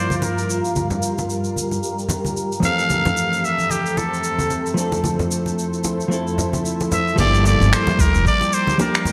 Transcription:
Already playing: G2 F3 G3 A#3 D4 F4 G4 A#4 C5
0.10 high conga, shaker
0.18 C5
0.22 A#4, muted conga, shaker
0.38 shaker
0.50 shaker
0.65 shaker
0.76 G4, muted conga, high conga, shaker
0.90 low conga, shaker
1.02 shaker
1.18 muted conga, shaker
1.30 shaker
1.44 shaker
1.56 high conga, shaker
1.71 muted conga, shaker
1.83 shaker
1.99 shaker
2.09 muted conga, low conga, shaker
2.25 high conga, shaker
2.37 shaker
2.52 shaker
2.60 F2 F3 A3 C4 A4, muted conga, low conga, shaker
2.64 E3 A4 F5
2.79 shaker
2.90 high conga, shaker
3.05 muted conga, low conga, shaker
3.17 shaker
3.33 shaker
3.45 E5, shaker
3.58 muted conga, shaker
3.70 G4, high conga, shaker
3.86 shaker
3.97 A4, muted conga, shaker
4.14 shaker
4.24 shaker
4.39 high conga, shaker
4.50 muted conga, shaker
4.66 shaker
4.74 F3 A3 C4 E4 C5, shaker
4.79 D4 A4
4.92 muted conga, shaker
5.04 high conga, shaker
5.19 low conga, shaker
5.31 shaker
5.46 muted conga, shaker
5.59 shaker
5.74 shaker
5.84 muted conga, high conga, shaker
6.00 shaker
6.08 F3 A3 C4 A4, shaker
6.13 E4 A4
6.27 shaker
6.38 muted conga, low conga, shaker
6.53 high conga, shaker
6.65 shaker
6.80 muted conga, shaker
6.92 E5, low conga, shaker
7.08 shaker
7.16 G1 F3 G3 A#3 G4 A#4 G5 D6, kick, crash, high conga, shaker
7.20 D4 G4 D5
7.34 shaker
7.45 D5, muted conga, shaker
7.61 G1, shaker
7.73 C5, finger snap, shaker
7.87 muted conga, low conga, shaker
7.99 D2 A#4, kick, high conga, shaker
8.14 F1, shaker
8.26 D5, kick, shaker
8.41 muted conga, shaker
8.53 C5, shaker
8.67 high conga, shaker
8.78 F3 G3 A#3 D4 G4 A#4, muted conga, shaker
8.95 finger snap, shaker
9.05 low conga, shaker

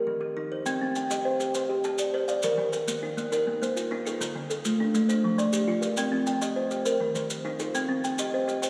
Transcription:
Already playing: A#4
0.07 D#3
0.21 G4
0.37 D#4
0.52 C5
0.66 C4 G5, maracas
0.81 C4
0.95 G5, maracas
1.10 G4 D#5, maracas
1.25 C5
1.40 G4, maracas
1.54 C5 G5, maracas
1.69 G4
1.84 G4 A5, maracas
1.98 D5, maracas
2.14 C5
2.28 D5 F5, maracas
2.42 D#3 A#4, maracas
2.58 D#3
2.72 A#4, maracas
2.88 A#3 G4, maracas
3.03 D#4
3.17 A#3, maracas
3.32 D#4 A#4, maracas
3.47 A#3
3.62 A#3 C5, maracas
3.77 F4, maracas
3.91 D#4
4.06 F4 A4, maracas
4.21 D3, maracas
4.35 D3
4.50 A4, maracas
4.65 A3 F4, maracas
4.80 D4
4.94 A3, maracas
5.09 D4 C5, maracas
5.24 F3
5.38 F3 D5, maracas
5.53 G4, maracas
5.68 F4
5.82 G4 A#4, maracas
5.97 C4 G5, maracas
6.12 C4
6.27 G5, maracas
6.42 G4 D#5, maracas
6.56 C5
6.71 G4, maracas
6.85 A#4 C5, maracas
7.00 D#3
7.15 D#3 C5, maracas
7.30 maracas
7.45 D#4
7.59 F4 A4, maracas
7.75 C4 G5, maracas
7.89 C4
8.04 G5, maracas
8.18 G4 D#5, maracas
8.34 C5
8.48 G4, maracas
8.62 C5 G5, maracas

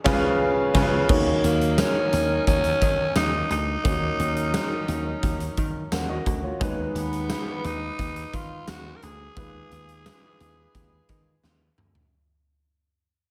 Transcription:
0.04 C#2 C#3 C#4 F4 G#4 B4, kick, snare, crash
0.13 F5
0.74 C#2 C#3 C#4 F4 G#4 B4, kick, snare, crash
0.83 F5
1.08 D#2 D#3 F#3 A#3 D#4 F#4 A#4 C#5, kick, crash
1.44 D#2 A#3, closed hi-hat
1.61 closed hi-hat
1.78 C#4, snare, closed hi-hat, tambourine
2.13 D#2, closed hi-hat
2.47 D#2 C#4, kick, closed hi-hat
2.64 closed hi-hat
2.81 D#3, kick, closed hi-hat
3.16 D#2 D#4, snare, closed hi-hat, tambourine
3.50 D2 D#4, closed hi-hat
3.84 D#2 D#3 F#3 A#3 C#4 F#4 A#4 C#5, kick, closed hi-hat
4.19 D#2, closed hi-hat
4.36 closed hi-hat
4.54 snare, closed hi-hat, tambourine
4.88 D#2, closed hi-hat
5.23 D#2, kick, closed hi-hat
5.40 closed hi-hat
5.57 D#3, kick, closed hi-hat
5.92 D#2 A#4 F#5, snare, closed hi-hat, tambourine
6.09 F#4 D#5
6.26 D2, kick, closed hi-hat
6.44 F4 C#5
6.60 D#2 D#3 G#3 B3 D#4 B4, kick, closed hi-hat
6.95 D#2 B3, closed hi-hat
7.13 closed hi-hat
7.29 snare, closed hi-hat, tambourine
7.64 D#2 D#4, closed hi-hat
7.99 D#2, kick, closed hi-hat
8.16 closed hi-hat
8.33 D#3 F4, kick, closed hi-hat
8.68 D#2 F#4, snare, closed hi-hat, tambourine
8.96 A#4
9.02 D2 G#4, closed hi-hat
9.36 D#2 D#3 G#3 B3 F4 B4, kick, closed hi-hat
9.71 D#2, closed hi-hat
9.88 closed hi-hat
10.06 snare, closed hi-hat, tambourine
10.40 D#2, closed hi-hat
10.75 D#2, kick, closed hi-hat
11.09 D#3, kick, closed hi-hat
11.44 D#2, snare
11.78 D2, mid tom
11.95 floor tom

